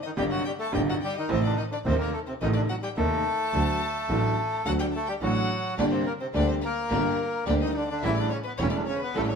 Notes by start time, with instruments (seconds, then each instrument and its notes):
0.03 bandoneon D#3 D#4, violin D#5
0.17 upright piano G1 G2 C3 D#3 G3 D#4, double bass G1, bandoneon G3 G4, violin G5
0.31 bandoneon F#3 F#4, violin F#5
0.45 bandoneon G3 G4, violin G5
0.59 bandoneon A3 A4, violin A5
0.72 upright piano G1 G2 C3 D#3 G3 D#4, double bass G1, bandoneon G3 G4, violin G5
0.89 bandoneon F#3 F#4, violin F#5
1.02 bandoneon G3 G4, violin G5
1.16 bandoneon D#3 D#4, violin D#5
1.28 upright piano A1 A2 C3 D#3 A3 D#4, double bass A1, bandoneon C3 C4, violin C5
1.44 bandoneon D3 D4, violin D5
1.57 bandoneon D#3 D#4, violin D#5
1.71 bandoneon D3 D4, violin D5
1.85 upright piano D#1 D#2 C3 D#3 A3 D#4, double bass D#2, bandoneon C3 C4, violin C5
1.98 bandoneon A#3 A#4, violin A#4
2.13 bandoneon A3 A4, violin A4
2.27 bandoneon C3 C4, violin C5
2.41 double bass A1, upright piano A1 A2 C3 D#3 A3 D#4, bandoneon D#3 D#4, violin D#5
2.53 bandoneon D3 D4, violin D5
2.69 bandoneon F#3 F#4, violin F#5
2.82 bandoneon G3 G4, violin G5
2.97 upright piano D#1 D#2 C3 D#3 A3 D#4, double bass D#2, bandoneon A3 A4, violin A5
3.53 double bass D2, upright piano D2 D3 F#3 A3 F#4
4.08 double bass A1, upright piano A1 A2 D3 F#3 A3 F#4
4.65 double bass D2, upright piano D2 D3 F#3 A3 F#4, bandoneon F#3 F#4, violin F#5
4.79 bandoneon G3 G4, violin G5
4.93 bandoneon A3 A4, violin A5
5.06 bandoneon G3 G4, violin G5
5.21 double bass A1, upright piano A1 A2 D3 F#3 A3 F#4, bandoneon F#3 F#4, violin F#5
5.77 double bass G1, upright piano G1 G2 D3 G3 A#3 G4, bandoneon D3 D4, string section A#3 D4 G4, violin D5
5.91 bandoneon C3 C4, violin C5
6.06 bandoneon A#3 A#4, violin A#4
6.20 bandoneon C3 C4, violin C5
6.33 double bass D2, upright piano D2 D3 G3 A#3 G4, bandoneon D3 D4, string section A#3 D4 G4, violin D5
6.48 bandoneon C3 C4, violin C5
6.61 bandoneon A#3, violin A#4
6.65 bandoneon A#4
6.90 double bass G1, upright piano G1 G2 D3 G3 A#3 G4, string section A#3 D4 G4
7.46 double bass D2, upright piano D2 D3 G3 A#3 G4, bandoneon D3 D4, string section A#3 D4 G4, violin D5
7.61 bandoneon D#3 D#4, violin D#5
7.71 bandoneon D#4, violin D#5
7.75 bandoneon D3 D4, violin D5
7.88 bandoneon D3 D4, violin D5
8.01 double bass A1, upright piano A1 A2 C#3 G3 A3 E4, string section A3 C#4 G4, bandoneon E4, violin E5
8.06 bandoneon E3
8.15 violin D5
8.19 bandoneon D3 D4
8.30 bandoneon C#3 C#4, violin C#5
8.44 bandoneon B3 B4, violin B4
8.58 double bass E1, upright piano E1 E2 C#3 G3 A3 E4, string section A3 C#4 G4, bandoneon C#4, violin C#5
8.62 bandoneon C#3
8.70 violin D5
8.76 bandoneon D3 D4
8.86 bandoneon C#3 C#4, violin C#5
8.99 bandoneon B3, violin B4
9.04 bandoneon B4
9.14 double bass A1, upright piano A1 A2 C#3 G3 A3 E4, string section A3 C#4 G4, bandoneon A3 A4, violin A4
9.25 bandoneon D4, violin C#5 D5
9.32 bandoneon C#3 C#4